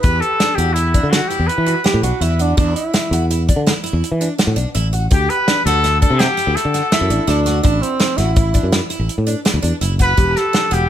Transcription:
0.03 E2 G4 B4, kick, closed hi-hat
0.21 A4, closed hi-hat
0.40 D4, snare, closed hi-hat
0.55 E2 F#4 G4, closed hi-hat
0.73 E4, closed hi-hat
0.94 D4, kick, closed hi-hat
1.03 D3
1.11 F#4, snare, closed hi-hat
1.28 E4 G4, closed hi-hat
1.39 E2
1.47 B4, closed hi-hat
1.58 E3
1.66 F#4, closed hi-hat
1.84 E4 G4, snare, closed hi-hat
1.94 A2
2.03 B1 D4 F#4, closed hi-hat
2.21 E2 E4, closed hi-hat
2.39 D4 F#4, closed hi-hat
2.57 E2 D4 E4, kick, closed hi-hat
2.76 E4, closed hi-hat
2.94 E4, snare, closed hi-hat
3.11 E2 F#4, closed hi-hat
3.31 E4, closed hi-hat
3.49 D4, kick, closed hi-hat
3.56 D3
3.67 E4, snare, closed hi-hat
3.84 E4, closed hi-hat
3.93 E2
4.04 closed hi-hat
4.12 E3
4.21 D4, closed hi-hat
4.39 F#4, snare, closed hi-hat
4.47 A2
4.56 B1 D4, closed hi-hat
4.75 A1 E4, closed hi-hat
4.93 F#4, closed hi-hat
5.11 D2 G4, kick, closed hi-hat
5.30 B4, closed hi-hat
5.48 D4, snare, closed hi-hat
5.66 D2 F#4 A4, snare, closed hi-hat
5.84 E4, snare, closed hi-hat
6.01 D4 A4, kick, closed hi-hat
6.10 C3
6.19 F#4 G4, snare, closed hi-hat
6.37 E4, closed hi-hat
6.47 D2
6.55 A4, snare, closed hi-hat
6.65 D3
6.74 F#4, snare, closed hi-hat
6.92 E4, snare, closed hi-hat
7.01 F#2
7.10 A1 D4, closed hi-hat
7.27 D2 D4 E4, snare, closed hi-hat
7.46 F#4, snare, closed hi-hat
7.63 A1 D4 E4, kick, closed hi-hat
7.82 C4, closed hi-hat
8.00 E4, snare, closed hi-hat
8.17 A1 E4 F#4, snare, closed hi-hat
8.36 E4, kick, closed hi-hat
8.54 D4, kick, closed hi-hat
8.63 F#2
8.72 E4, snare, closed hi-hat
8.90 E4, closed hi-hat
8.99 A1
9.09 closed hi-hat
9.18 A2
9.27 D4, closed hi-hat
9.45 E4, snare, closed hi-hat
9.54 D2
9.63 E2 D4, closed hi-hat
9.81 F#1 E4, closed hi-hat
9.99 F#4 B4, kick, closed hi-hat
10.17 E1 G4, kick, closed hi-hat
10.37 A4, snare, closed hi-hat
10.53 D4, snare, closed hi-hat
10.71 E1 F#4 G4, closed hi-hat

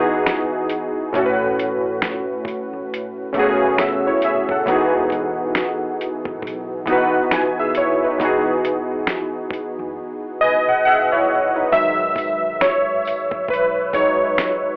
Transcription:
Already playing: E3 B3 D#4 F#4 G#4
0.26 finger snap, snare, closed hi-hat
0.69 closed hi-hat
1.12 A1 A2 A3 C#4, kick, closed hi-hat
1.17 F#4 A4
1.26 B4
1.59 closed hi-hat
2.02 finger snap, snare, closed hi-hat
2.45 kick, closed hi-hat
2.73 A1
2.94 closed hi-hat
3.33 G#1 C#3 A3 B3, kick, closed hi-hat
3.38 F#4 G#4
3.43 C#4
3.78 G#4 E5, finger snap, snare, closed hi-hat
4.07 E4 C#5
4.22 G#4 E5, closed hi-hat
4.49 D#1 A4 F#5, kick
4.65 E1 E3 B3 D#4, kick, closed hi-hat
4.70 F#4 G#4
5.10 kick, closed hi-hat
5.55 finger snap, snare, closed hi-hat
6.01 closed hi-hat
6.25 G#1, kick
6.42 B1, kick
6.47 closed hi-hat
6.86 E3 B3 D#4, kick, closed hi-hat
6.90 F#4 B4
7.31 B4 G#5, finger snap, snare, closed hi-hat
7.59 G#4 E5
7.75 E4 C#5, closed hi-hat
8.04 D#4 B4
8.18 E1 E3 B3 D#4, kick, closed hi-hat
8.23 F#4 G#4
8.65 closed hi-hat
9.07 finger snap, snare, closed hi-hat
9.51 kick, closed hi-hat
9.79 F#1
10.41 B4 D#5 G#5
10.68 F#5
10.85 G#4 E5 F#5
11.12 E4 C#5
11.56 D#4 B4
11.73 E1 D#3 F#3 G#3 E5, kick, closed hi-hat
12.16 kick, closed hi-hat, tambourine
12.61 C#5, finger snap, snare, closed hi-hat
13.05 closed hi-hat, tambourine
13.31 G#1, kick
13.48 B1 B4, kick
13.53 closed hi-hat
13.94 F#3 G#3 D#4 C#5, kick, closed hi-hat, tambourine
14.38 finger snap, snare, closed hi-hat

